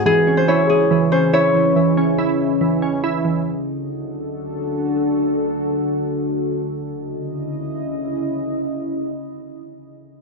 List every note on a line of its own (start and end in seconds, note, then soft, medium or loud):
0.00 1.86 F#4 medium
0.00 0.37 C5 medium
0.00 3.42 D#5 medium
0.06 3.43 C#3 medium
0.06 0.90 E3 medium
0.06 3.43 C#4 medium
0.06 3.43 E4 medium
0.06 0.69 G#4 loud
0.27 1.11 C#4 medium
0.37 0.54 C5 medium
0.48 1.32 E4 medium
0.48 1.18 C#5 medium
0.70 2.97 G#4 medium
0.91 1.54 E3 medium
1.12 1.96 C#4 medium
1.12 1.39 C5 medium
1.33 2.17 E4 medium
1.33 3.25 C#5 medium
1.55 1.75 E3 medium
1.76 2.60 E3 medium
1.97 2.81 C#4 medium
2.18 3.02 E4 medium
2.61 3.24 E3 medium
2.82 3.46 C#4 medium
3.04 3.46 E4 medium
3.25 3.46 E3 medium
3.46 6.83 D3 medium
3.46 6.83 D4 medium
3.46 6.83 F#4 medium
3.46 6.83 A4 medium
6.86 10.02 C#3 medium
6.86 10.02 C#4 medium
6.86 10.02 E4 medium
6.86 10.02 D#5 medium